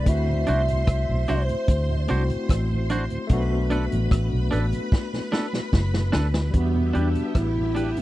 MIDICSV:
0, 0, Header, 1, 8, 480
1, 0, Start_track
1, 0, Key_signature, 1, "minor"
1, 0, Tempo, 809717
1, 40, Time_signature, 4, 2, 24, 8
1, 4754, End_track
2, 0, Start_track
2, 0, Title_t, "String machine"
2, 0, Program_c, 0, 50
2, 38, Note_on_c, 0, 84, 99
2, 39, Note_on_c, 0, 72, 88
2, 1934, Note_off_c, 0, 84, 0
2, 1935, Note_off_c, 0, 72, 0
2, 1956, Note_on_c, 0, 83, 95
2, 1957, Note_on_c, 0, 71, 91
2, 3854, Note_off_c, 0, 83, 0
2, 3855, Note_off_c, 0, 71, 0
2, 3879, Note_on_c, 0, 59, 90
2, 3880, Note_on_c, 0, 67, 91
2, 3881, Note_on_c, 0, 76, 95
2, 4754, Note_off_c, 0, 59, 0
2, 4754, Note_off_c, 0, 67, 0
2, 4754, Note_off_c, 0, 76, 0
2, 4754, End_track
3, 0, Start_track
3, 0, Title_t, "Clean electric guitar"
3, 0, Program_c, 1, 27
3, 278, Note_on_c, 1, 62, 94
3, 287, Note_on_c, 1, 66, 96
3, 292, Note_on_c, 1, 72, 96
3, 357, Note_off_c, 1, 62, 0
3, 362, Note_off_c, 1, 66, 0
3, 364, Note_off_c, 1, 72, 0
3, 760, Note_on_c, 1, 62, 78
3, 765, Note_on_c, 1, 66, 84
3, 770, Note_on_c, 1, 72, 98
3, 838, Note_off_c, 1, 62, 0
3, 840, Note_off_c, 1, 66, 0
3, 843, Note_off_c, 1, 72, 0
3, 1238, Note_on_c, 1, 62, 93
3, 1244, Note_on_c, 1, 66, 91
3, 1249, Note_on_c, 1, 72, 94
3, 1317, Note_off_c, 1, 62, 0
3, 1320, Note_off_c, 1, 66, 0
3, 1322, Note_off_c, 1, 72, 0
3, 1719, Note_on_c, 1, 62, 79
3, 1725, Note_on_c, 1, 66, 84
3, 1730, Note_on_c, 1, 72, 96
3, 1797, Note_off_c, 1, 62, 0
3, 1800, Note_off_c, 1, 66, 0
3, 1803, Note_off_c, 1, 72, 0
3, 2195, Note_on_c, 1, 62, 87
3, 2202, Note_on_c, 1, 69, 91
3, 2206, Note_on_c, 1, 71, 95
3, 2275, Note_off_c, 1, 62, 0
3, 2279, Note_off_c, 1, 69, 0
3, 2281, Note_off_c, 1, 71, 0
3, 2673, Note_on_c, 1, 62, 88
3, 2681, Note_on_c, 1, 69, 80
3, 2685, Note_on_c, 1, 71, 86
3, 2754, Note_off_c, 1, 62, 0
3, 2758, Note_off_c, 1, 69, 0
3, 2760, Note_off_c, 1, 71, 0
3, 3154, Note_on_c, 1, 62, 90
3, 3162, Note_on_c, 1, 69, 100
3, 3167, Note_on_c, 1, 71, 92
3, 3235, Note_off_c, 1, 62, 0
3, 3238, Note_off_c, 1, 69, 0
3, 3241, Note_off_c, 1, 71, 0
3, 3630, Note_on_c, 1, 62, 84
3, 3637, Note_on_c, 1, 69, 93
3, 3641, Note_on_c, 1, 71, 86
3, 3713, Note_off_c, 1, 62, 0
3, 3716, Note_off_c, 1, 69, 0
3, 3718, Note_off_c, 1, 71, 0
3, 4111, Note_on_c, 1, 62, 76
3, 4119, Note_on_c, 1, 67, 78
3, 4125, Note_on_c, 1, 71, 84
3, 4193, Note_off_c, 1, 62, 0
3, 4197, Note_off_c, 1, 67, 0
3, 4200, Note_off_c, 1, 71, 0
3, 4593, Note_on_c, 1, 62, 73
3, 4601, Note_on_c, 1, 67, 78
3, 4606, Note_on_c, 1, 71, 85
3, 4674, Note_off_c, 1, 62, 0
3, 4678, Note_off_c, 1, 67, 0
3, 4681, Note_off_c, 1, 71, 0
3, 4754, End_track
4, 0, Start_track
4, 0, Title_t, "Soft synth lead"
4, 0, Program_c, 2, 80
4, 49, Note_on_c, 2, 76, 127
4, 524, Note_off_c, 2, 76, 0
4, 531, Note_on_c, 2, 76, 112
4, 770, Note_on_c, 2, 72, 93
4, 779, Note_off_c, 2, 76, 0
4, 1245, Note_off_c, 2, 72, 0
4, 3896, Note_on_c, 2, 59, 108
4, 4137, Note_on_c, 2, 62, 98
4, 4145, Note_off_c, 2, 59, 0
4, 4360, Note_off_c, 2, 62, 0
4, 4364, Note_on_c, 2, 64, 108
4, 4729, Note_on_c, 2, 59, 94
4, 4738, Note_off_c, 2, 64, 0
4, 4754, Note_off_c, 2, 59, 0
4, 4754, End_track
5, 0, Start_track
5, 0, Title_t, "Tine electric piano"
5, 0, Program_c, 3, 4
5, 0, Control_c, 3, 64, 127
5, 19, Note_on_c, 3, 57, 68
5, 32, Note_on_c, 3, 60, 66
5, 43, Note_on_c, 3, 64, 64
5, 49, Control_c, 3, 64, 0
5, 53, Note_on_c, 3, 66, 78
5, 169, Control_c, 3, 64, 127
5, 1205, Note_off_c, 3, 57, 0
5, 1212, Note_off_c, 3, 60, 0
5, 1217, Note_off_c, 3, 64, 0
5, 1222, Note_off_c, 3, 66, 0
5, 1227, Note_on_c, 3, 57, 56
5, 1235, Note_on_c, 3, 60, 52
5, 1240, Note_on_c, 3, 64, 49
5, 1245, Note_on_c, 3, 66, 60
5, 1932, Note_off_c, 3, 57, 0
5, 1939, Note_on_c, 3, 57, 87
5, 1951, Note_on_c, 3, 59, 76
5, 1957, Note_off_c, 3, 60, 0
5, 1960, Note_off_c, 3, 64, 0
5, 1962, Note_off_c, 3, 66, 0
5, 1964, Note_on_c, 3, 62, 79
5, 1966, Control_c, 3, 64, 0
5, 1975, Note_on_c, 3, 66, 91
5, 2077, Control_c, 3, 64, 127
5, 3845, Note_off_c, 3, 57, 0
5, 3852, Note_off_c, 3, 59, 0
5, 3857, Note_on_c, 3, 55, 67
5, 3858, Note_off_c, 3, 62, 0
5, 3864, Note_off_c, 3, 66, 0
5, 3868, Note_on_c, 3, 59, 59
5, 3879, Note_on_c, 3, 62, 58
5, 3886, Control_c, 3, 64, 0
5, 3893, Note_on_c, 3, 66, 70
5, 3997, Control_c, 3, 64, 127
5, 4754, Note_off_c, 3, 55, 0
5, 4754, Note_off_c, 3, 59, 0
5, 4754, Note_off_c, 3, 62, 0
5, 4754, Note_off_c, 3, 66, 0
5, 4754, End_track
6, 0, Start_track
6, 0, Title_t, "Tonewheel organ"
6, 0, Program_c, 4, 16
6, 163, Note_on_c, 4, 38, 65
6, 164, Note_on_c, 4, 45, 67
6, 208, Note_off_c, 4, 38, 0
6, 208, Note_off_c, 4, 45, 0
6, 279, Note_on_c, 4, 54, 74
6, 281, Note_on_c, 4, 60, 65
6, 283, Note_on_c, 4, 62, 78
6, 327, Note_off_c, 4, 54, 0
6, 328, Note_off_c, 4, 60, 0
6, 328, Note_off_c, 4, 62, 0
6, 406, Note_on_c, 4, 38, 60
6, 407, Note_on_c, 4, 45, 55
6, 449, Note_off_c, 4, 38, 0
6, 450, Note_off_c, 4, 45, 0
6, 646, Note_on_c, 4, 45, 59
6, 648, Note_on_c, 4, 38, 61
6, 689, Note_off_c, 4, 45, 0
6, 690, Note_off_c, 4, 38, 0
6, 761, Note_on_c, 4, 54, 83
6, 764, Note_on_c, 4, 60, 75
6, 767, Note_on_c, 4, 62, 89
6, 807, Note_off_c, 4, 54, 0
6, 809, Note_off_c, 4, 60, 0
6, 810, Note_off_c, 4, 62, 0
6, 885, Note_on_c, 4, 38, 62
6, 887, Note_on_c, 4, 45, 62
6, 928, Note_off_c, 4, 38, 0
6, 930, Note_off_c, 4, 45, 0
6, 1120, Note_on_c, 4, 45, 61
6, 1122, Note_on_c, 4, 38, 64
6, 1166, Note_off_c, 4, 45, 0
6, 1167, Note_off_c, 4, 38, 0
6, 1236, Note_on_c, 4, 54, 77
6, 1238, Note_on_c, 4, 60, 70
6, 1240, Note_on_c, 4, 62, 86
6, 1284, Note_off_c, 4, 54, 0
6, 1286, Note_off_c, 4, 60, 0
6, 1286, Note_off_c, 4, 62, 0
6, 1361, Note_on_c, 4, 38, 56
6, 1361, Note_on_c, 4, 45, 55
6, 1407, Note_off_c, 4, 38, 0
6, 1407, Note_off_c, 4, 45, 0
6, 1599, Note_on_c, 4, 45, 65
6, 1601, Note_on_c, 4, 38, 60
6, 1645, Note_off_c, 4, 45, 0
6, 1647, Note_off_c, 4, 38, 0
6, 1720, Note_on_c, 4, 54, 81
6, 1722, Note_on_c, 4, 60, 74
6, 1723, Note_on_c, 4, 62, 87
6, 1767, Note_off_c, 4, 54, 0
6, 1767, Note_off_c, 4, 60, 0
6, 1768, Note_off_c, 4, 62, 0
6, 1841, Note_on_c, 4, 45, 59
6, 1842, Note_on_c, 4, 38, 59
6, 1887, Note_off_c, 4, 38, 0
6, 1887, Note_off_c, 4, 45, 0
6, 2078, Note_on_c, 4, 54, 66
6, 2079, Note_on_c, 4, 47, 65
6, 2125, Note_off_c, 4, 47, 0
6, 2125, Note_off_c, 4, 54, 0
6, 2196, Note_on_c, 4, 57, 71
6, 2197, Note_on_c, 4, 59, 67
6, 2199, Note_on_c, 4, 62, 78
6, 2244, Note_off_c, 4, 57, 0
6, 2245, Note_off_c, 4, 59, 0
6, 2246, Note_off_c, 4, 62, 0
6, 2323, Note_on_c, 4, 47, 58
6, 2323, Note_on_c, 4, 54, 58
6, 2367, Note_off_c, 4, 47, 0
6, 2367, Note_off_c, 4, 54, 0
6, 2565, Note_on_c, 4, 54, 57
6, 2566, Note_on_c, 4, 47, 60
6, 2608, Note_off_c, 4, 54, 0
6, 2609, Note_off_c, 4, 47, 0
6, 2677, Note_on_c, 4, 57, 81
6, 2678, Note_on_c, 4, 59, 75
6, 2679, Note_on_c, 4, 62, 91
6, 2725, Note_off_c, 4, 57, 0
6, 2725, Note_off_c, 4, 59, 0
6, 2726, Note_off_c, 4, 62, 0
6, 2800, Note_on_c, 4, 54, 65
6, 2801, Note_on_c, 4, 47, 61
6, 2846, Note_off_c, 4, 47, 0
6, 2846, Note_off_c, 4, 54, 0
6, 3040, Note_on_c, 4, 47, 56
6, 3040, Note_on_c, 4, 54, 61
6, 3086, Note_off_c, 4, 47, 0
6, 3086, Note_off_c, 4, 54, 0
6, 3154, Note_on_c, 4, 57, 74
6, 3156, Note_on_c, 4, 59, 70
6, 3156, Note_on_c, 4, 62, 81
6, 3204, Note_off_c, 4, 57, 0
6, 3204, Note_off_c, 4, 59, 0
6, 3205, Note_off_c, 4, 62, 0
6, 3278, Note_on_c, 4, 47, 59
6, 3278, Note_on_c, 4, 54, 60
6, 3325, Note_off_c, 4, 47, 0
6, 3325, Note_off_c, 4, 54, 0
6, 3519, Note_on_c, 4, 47, 62
6, 3520, Note_on_c, 4, 54, 58
6, 3566, Note_off_c, 4, 47, 0
6, 3566, Note_off_c, 4, 54, 0
6, 3633, Note_on_c, 4, 57, 80
6, 3634, Note_on_c, 4, 59, 67
6, 3636, Note_on_c, 4, 62, 80
6, 3683, Note_off_c, 4, 57, 0
6, 3684, Note_off_c, 4, 59, 0
6, 3685, Note_off_c, 4, 62, 0
6, 3999, Note_on_c, 4, 40, 60
6, 4000, Note_on_c, 4, 47, 54
6, 4045, Note_off_c, 4, 40, 0
6, 4046, Note_off_c, 4, 47, 0
6, 4112, Note_on_c, 4, 55, 63
6, 4113, Note_on_c, 4, 62, 61
6, 4116, Note_on_c, 4, 64, 72
6, 4163, Note_off_c, 4, 55, 0
6, 4163, Note_off_c, 4, 62, 0
6, 4164, Note_off_c, 4, 64, 0
6, 4238, Note_on_c, 4, 40, 53
6, 4238, Note_on_c, 4, 47, 51
6, 4285, Note_off_c, 4, 40, 0
6, 4285, Note_off_c, 4, 47, 0
6, 4477, Note_on_c, 4, 47, 53
6, 4478, Note_on_c, 4, 40, 53
6, 4525, Note_off_c, 4, 40, 0
6, 4525, Note_off_c, 4, 47, 0
6, 4597, Note_on_c, 4, 55, 72
6, 4599, Note_on_c, 4, 62, 67
6, 4599, Note_on_c, 4, 64, 78
6, 4646, Note_off_c, 4, 55, 0
6, 4647, Note_off_c, 4, 62, 0
6, 4647, Note_off_c, 4, 64, 0
6, 4721, Note_on_c, 4, 40, 57
6, 4723, Note_on_c, 4, 47, 55
6, 4754, Note_off_c, 4, 40, 0
6, 4754, Note_off_c, 4, 47, 0
6, 4754, End_track
7, 0, Start_track
7, 0, Title_t, "Fingered electric bass"
7, 0, Program_c, 5, 33
7, 43, Note_on_c, 5, 38, 105
7, 258, Note_off_c, 5, 38, 0
7, 289, Note_on_c, 5, 36, 97
7, 502, Note_off_c, 5, 36, 0
7, 524, Note_on_c, 5, 36, 96
7, 633, Note_off_c, 5, 36, 0
7, 647, Note_on_c, 5, 35, 86
7, 751, Note_off_c, 5, 35, 0
7, 769, Note_on_c, 5, 36, 90
7, 875, Note_off_c, 5, 36, 0
7, 1001, Note_on_c, 5, 38, 109
7, 1217, Note_off_c, 5, 38, 0
7, 1248, Note_on_c, 5, 36, 94
7, 1355, Note_off_c, 5, 36, 0
7, 1482, Note_on_c, 5, 33, 89
7, 1819, Note_off_c, 5, 33, 0
7, 1961, Note_on_c, 5, 35, 105
7, 2299, Note_off_c, 5, 35, 0
7, 2330, Note_on_c, 5, 33, 92
7, 2432, Note_off_c, 5, 33, 0
7, 2443, Note_on_c, 5, 33, 102
7, 2552, Note_off_c, 5, 33, 0
7, 2569, Note_on_c, 5, 35, 93
7, 2672, Note_off_c, 5, 35, 0
7, 2687, Note_on_c, 5, 33, 92
7, 2794, Note_off_c, 5, 33, 0
7, 3400, Note_on_c, 5, 30, 89
7, 3617, Note_off_c, 5, 30, 0
7, 3645, Note_on_c, 5, 38, 92
7, 3859, Note_off_c, 5, 38, 0
7, 3880, Note_on_c, 5, 40, 102
7, 4097, Note_off_c, 5, 40, 0
7, 4123, Note_on_c, 5, 40, 93
7, 4232, Note_off_c, 5, 40, 0
7, 4361, Note_on_c, 5, 33, 91
7, 4699, Note_off_c, 5, 33, 0
7, 4754, End_track
8, 0, Start_track
8, 0, Title_t, "Drums"
8, 38, Note_on_c, 9, 36, 101
8, 38, Note_on_c, 9, 42, 90
8, 97, Note_off_c, 9, 36, 0
8, 97, Note_off_c, 9, 42, 0
8, 276, Note_on_c, 9, 42, 67
8, 335, Note_off_c, 9, 42, 0
8, 404, Note_on_c, 9, 42, 57
8, 464, Note_off_c, 9, 42, 0
8, 518, Note_on_c, 9, 36, 121
8, 518, Note_on_c, 9, 37, 123
8, 520, Note_on_c, 9, 42, 77
8, 577, Note_off_c, 9, 37, 0
8, 578, Note_off_c, 9, 36, 0
8, 580, Note_off_c, 9, 42, 0
8, 757, Note_on_c, 9, 37, 62
8, 759, Note_on_c, 9, 42, 72
8, 817, Note_off_c, 9, 37, 0
8, 818, Note_off_c, 9, 42, 0
8, 884, Note_on_c, 9, 42, 61
8, 943, Note_off_c, 9, 42, 0
8, 997, Note_on_c, 9, 36, 118
8, 999, Note_on_c, 9, 42, 103
8, 1056, Note_off_c, 9, 36, 0
8, 1058, Note_off_c, 9, 42, 0
8, 1234, Note_on_c, 9, 42, 79
8, 1293, Note_off_c, 9, 42, 0
8, 1361, Note_on_c, 9, 42, 54
8, 1421, Note_off_c, 9, 42, 0
8, 1478, Note_on_c, 9, 36, 104
8, 1482, Note_on_c, 9, 42, 100
8, 1484, Note_on_c, 9, 37, 107
8, 1537, Note_off_c, 9, 36, 0
8, 1541, Note_off_c, 9, 42, 0
8, 1543, Note_off_c, 9, 37, 0
8, 1716, Note_on_c, 9, 42, 89
8, 1776, Note_off_c, 9, 42, 0
8, 1838, Note_on_c, 9, 42, 50
8, 1897, Note_off_c, 9, 42, 0
8, 1952, Note_on_c, 9, 42, 82
8, 1955, Note_on_c, 9, 36, 104
8, 2011, Note_off_c, 9, 42, 0
8, 2015, Note_off_c, 9, 36, 0
8, 2196, Note_on_c, 9, 42, 66
8, 2255, Note_off_c, 9, 42, 0
8, 2323, Note_on_c, 9, 42, 54
8, 2382, Note_off_c, 9, 42, 0
8, 2438, Note_on_c, 9, 36, 118
8, 2440, Note_on_c, 9, 37, 114
8, 2443, Note_on_c, 9, 42, 78
8, 2497, Note_off_c, 9, 36, 0
8, 2500, Note_off_c, 9, 37, 0
8, 2502, Note_off_c, 9, 42, 0
8, 2680, Note_on_c, 9, 42, 73
8, 2739, Note_off_c, 9, 42, 0
8, 2801, Note_on_c, 9, 42, 56
8, 2860, Note_off_c, 9, 42, 0
8, 2917, Note_on_c, 9, 36, 114
8, 2923, Note_on_c, 9, 38, 61
8, 2976, Note_off_c, 9, 36, 0
8, 2982, Note_off_c, 9, 38, 0
8, 3043, Note_on_c, 9, 38, 57
8, 3103, Note_off_c, 9, 38, 0
8, 3161, Note_on_c, 9, 38, 72
8, 3220, Note_off_c, 9, 38, 0
8, 3282, Note_on_c, 9, 38, 74
8, 3341, Note_off_c, 9, 38, 0
8, 3396, Note_on_c, 9, 36, 103
8, 3399, Note_on_c, 9, 38, 82
8, 3455, Note_off_c, 9, 36, 0
8, 3458, Note_off_c, 9, 38, 0
8, 3521, Note_on_c, 9, 38, 84
8, 3580, Note_off_c, 9, 38, 0
8, 3634, Note_on_c, 9, 38, 102
8, 3693, Note_off_c, 9, 38, 0
8, 3759, Note_on_c, 9, 38, 95
8, 3818, Note_off_c, 9, 38, 0
8, 3873, Note_on_c, 9, 42, 77
8, 3876, Note_on_c, 9, 36, 96
8, 3933, Note_off_c, 9, 42, 0
8, 3935, Note_off_c, 9, 36, 0
8, 4118, Note_on_c, 9, 42, 60
8, 4178, Note_off_c, 9, 42, 0
8, 4239, Note_on_c, 9, 42, 50
8, 4299, Note_off_c, 9, 42, 0
8, 4357, Note_on_c, 9, 36, 110
8, 4357, Note_on_c, 9, 37, 108
8, 4360, Note_on_c, 9, 42, 73
8, 4416, Note_off_c, 9, 37, 0
8, 4417, Note_off_c, 9, 36, 0
8, 4419, Note_off_c, 9, 42, 0
8, 4601, Note_on_c, 9, 42, 66
8, 4660, Note_off_c, 9, 42, 0
8, 4722, Note_on_c, 9, 42, 54
8, 4754, Note_off_c, 9, 42, 0
8, 4754, End_track
0, 0, End_of_file